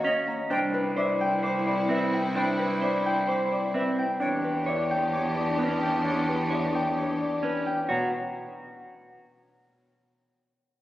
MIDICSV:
0, 0, Header, 1, 7, 480
1, 0, Start_track
1, 0, Tempo, 461538
1, 527, Time_signature, 4, 2, 24, 8
1, 11252, End_track
2, 0, Start_track
2, 0, Title_t, "Flute"
2, 0, Program_c, 0, 73
2, 53, Note_on_c, 0, 75, 90
2, 142, Note_off_c, 0, 75, 0
2, 527, Note_on_c, 0, 79, 92
2, 617, Note_off_c, 0, 79, 0
2, 1012, Note_on_c, 0, 76, 76
2, 1101, Note_off_c, 0, 76, 0
2, 1488, Note_on_c, 0, 86, 71
2, 1578, Note_off_c, 0, 86, 0
2, 1974, Note_on_c, 0, 76, 80
2, 2063, Note_off_c, 0, 76, 0
2, 2453, Note_on_c, 0, 79, 94
2, 2542, Note_off_c, 0, 79, 0
2, 2930, Note_on_c, 0, 76, 66
2, 3019, Note_off_c, 0, 76, 0
2, 3410, Note_on_c, 0, 86, 64
2, 3500, Note_off_c, 0, 86, 0
2, 3889, Note_on_c, 0, 76, 79
2, 3979, Note_off_c, 0, 76, 0
2, 4368, Note_on_c, 0, 79, 84
2, 4457, Note_off_c, 0, 79, 0
2, 4853, Note_on_c, 0, 76, 56
2, 4942, Note_off_c, 0, 76, 0
2, 5331, Note_on_c, 0, 86, 56
2, 5420, Note_off_c, 0, 86, 0
2, 6288, Note_on_c, 0, 79, 70
2, 6378, Note_off_c, 0, 79, 0
2, 6771, Note_on_c, 0, 76, 52
2, 6860, Note_off_c, 0, 76, 0
2, 7248, Note_on_c, 0, 86, 53
2, 7338, Note_off_c, 0, 86, 0
2, 8210, Note_on_c, 0, 82, 62
2, 8432, Note_off_c, 0, 82, 0
2, 11252, End_track
3, 0, Start_track
3, 0, Title_t, "Harp"
3, 0, Program_c, 1, 46
3, 0, Note_on_c, 1, 75, 73
3, 0, Note_on_c, 1, 77, 72
3, 0, Note_on_c, 1, 82, 94
3, 37, Note_on_c, 1, 73, 84
3, 272, Note_off_c, 1, 82, 0
3, 284, Note_on_c, 1, 82, 79
3, 526, Note_on_c, 1, 72, 94
3, 541, Note_off_c, 1, 73, 0
3, 542, Note_off_c, 1, 75, 0
3, 543, Note_off_c, 1, 77, 0
3, 545, Note_off_c, 1, 82, 0
3, 768, Note_on_c, 1, 71, 81
3, 1008, Note_on_c, 1, 74, 81
3, 1255, Note_on_c, 1, 79, 93
3, 1483, Note_off_c, 1, 72, 0
3, 1495, Note_on_c, 1, 72, 73
3, 1717, Note_off_c, 1, 74, 0
3, 1730, Note_on_c, 1, 74, 68
3, 1968, Note_off_c, 1, 71, 0
3, 1980, Note_on_c, 1, 71, 82
3, 2207, Note_off_c, 1, 79, 0
3, 2219, Note_on_c, 1, 79, 78
3, 2440, Note_off_c, 1, 72, 0
3, 2453, Note_on_c, 1, 72, 83
3, 2681, Note_off_c, 1, 71, 0
3, 2694, Note_on_c, 1, 71, 71
3, 2928, Note_off_c, 1, 74, 0
3, 2941, Note_on_c, 1, 74, 65
3, 3169, Note_off_c, 1, 79, 0
3, 3181, Note_on_c, 1, 79, 92
3, 3405, Note_off_c, 1, 72, 0
3, 3417, Note_on_c, 1, 72, 65
3, 3647, Note_off_c, 1, 74, 0
3, 3659, Note_on_c, 1, 74, 60
3, 3884, Note_off_c, 1, 71, 0
3, 3897, Note_on_c, 1, 71, 72
3, 4131, Note_off_c, 1, 79, 0
3, 4143, Note_on_c, 1, 79, 68
3, 4383, Note_on_c, 1, 73, 82
3, 4391, Note_off_c, 1, 72, 0
3, 4605, Note_off_c, 1, 71, 0
3, 4618, Note_on_c, 1, 71, 63
3, 4847, Note_off_c, 1, 74, 0
3, 4860, Note_on_c, 1, 74, 60
3, 5092, Note_off_c, 1, 79, 0
3, 5104, Note_on_c, 1, 79, 73
3, 5324, Note_off_c, 1, 73, 0
3, 5337, Note_on_c, 1, 73, 55
3, 5567, Note_off_c, 1, 74, 0
3, 5579, Note_on_c, 1, 74, 52
3, 5801, Note_off_c, 1, 71, 0
3, 5813, Note_on_c, 1, 71, 61
3, 6045, Note_off_c, 1, 79, 0
3, 6058, Note_on_c, 1, 79, 59
3, 6279, Note_off_c, 1, 73, 0
3, 6292, Note_on_c, 1, 73, 64
3, 6526, Note_off_c, 1, 71, 0
3, 6539, Note_on_c, 1, 71, 51
3, 6760, Note_off_c, 1, 74, 0
3, 6772, Note_on_c, 1, 74, 53
3, 7005, Note_off_c, 1, 79, 0
3, 7017, Note_on_c, 1, 79, 63
3, 7246, Note_off_c, 1, 73, 0
3, 7259, Note_on_c, 1, 73, 53
3, 7486, Note_off_c, 1, 74, 0
3, 7499, Note_on_c, 1, 74, 45
3, 7723, Note_off_c, 1, 71, 0
3, 7736, Note_on_c, 1, 71, 64
3, 7958, Note_off_c, 1, 79, 0
3, 7971, Note_on_c, 1, 79, 58
3, 8197, Note_off_c, 1, 73, 0
3, 8209, Note_on_c, 1, 73, 68
3, 8228, Note_off_c, 1, 79, 0
3, 8232, Note_off_c, 1, 74, 0
3, 8431, Note_off_c, 1, 73, 0
3, 10151, Note_off_c, 1, 71, 0
3, 11252, End_track
4, 0, Start_track
4, 0, Title_t, "Clarinet"
4, 0, Program_c, 2, 71
4, 0, Note_on_c, 2, 66, 77
4, 242, Note_off_c, 2, 66, 0
4, 536, Note_on_c, 2, 64, 74
4, 4090, Note_off_c, 2, 64, 0
4, 4375, Note_on_c, 2, 62, 65
4, 7930, Note_off_c, 2, 62, 0
4, 11252, End_track
5, 0, Start_track
5, 0, Title_t, "String section"
5, 0, Program_c, 3, 48
5, 0, Note_on_c, 3, 61, 81
5, 0, Note_on_c, 3, 66, 78
5, 244, Note_off_c, 3, 61, 0
5, 245, Note_off_c, 3, 66, 0
5, 521, Note_on_c, 3, 60, 80
5, 522, Note_on_c, 3, 64, 88
5, 4082, Note_off_c, 3, 60, 0
5, 4083, Note_off_c, 3, 64, 0
5, 4370, Note_on_c, 3, 62, 73
5, 4372, Note_on_c, 3, 67, 74
5, 7927, Note_off_c, 3, 62, 0
5, 7928, Note_off_c, 3, 67, 0
5, 11252, End_track
6, 0, Start_track
6, 0, Title_t, "Clean electric guitar"
6, 0, Program_c, 4, 27
6, 46, Note_on_c, 4, 61, 96
6, 359, Note_off_c, 4, 61, 0
6, 522, Note_on_c, 4, 62, 74
6, 837, Note_off_c, 4, 62, 0
6, 1003, Note_on_c, 4, 72, 70
6, 1318, Note_off_c, 4, 72, 0
6, 1487, Note_on_c, 4, 72, 65
6, 1799, Note_off_c, 4, 72, 0
6, 1967, Note_on_c, 4, 60, 89
6, 2279, Note_off_c, 4, 60, 0
6, 2446, Note_on_c, 4, 62, 76
6, 2759, Note_off_c, 4, 62, 0
6, 2929, Note_on_c, 4, 72, 68
6, 3240, Note_off_c, 4, 72, 0
6, 3406, Note_on_c, 4, 72, 68
6, 3719, Note_off_c, 4, 72, 0
6, 3891, Note_on_c, 4, 60, 79
6, 4200, Note_off_c, 4, 60, 0
6, 4368, Note_on_c, 4, 62, 67
6, 4679, Note_off_c, 4, 62, 0
6, 4850, Note_on_c, 4, 73, 64
6, 5160, Note_off_c, 4, 73, 0
6, 5807, Note_on_c, 4, 61, 69
6, 6119, Note_off_c, 4, 61, 0
6, 6286, Note_on_c, 4, 62, 52
6, 6598, Note_off_c, 4, 62, 0
6, 6763, Note_on_c, 4, 73, 49
6, 7078, Note_off_c, 4, 73, 0
6, 7724, Note_on_c, 4, 61, 69
6, 8038, Note_off_c, 4, 61, 0
6, 8203, Note_on_c, 4, 66, 63
6, 8428, Note_off_c, 4, 66, 0
6, 11252, End_track
7, 0, Start_track
7, 0, Title_t, "Cello"
7, 0, Program_c, 5, 42
7, 0, Note_on_c, 5, 39, 79
7, 389, Note_off_c, 5, 39, 0
7, 530, Note_on_c, 5, 36, 72
7, 4231, Note_off_c, 5, 36, 0
7, 4373, Note_on_c, 5, 40, 66
7, 8072, Note_off_c, 5, 40, 0
7, 8207, Note_on_c, 5, 47, 51
7, 8430, Note_off_c, 5, 47, 0
7, 11252, End_track
0, 0, End_of_file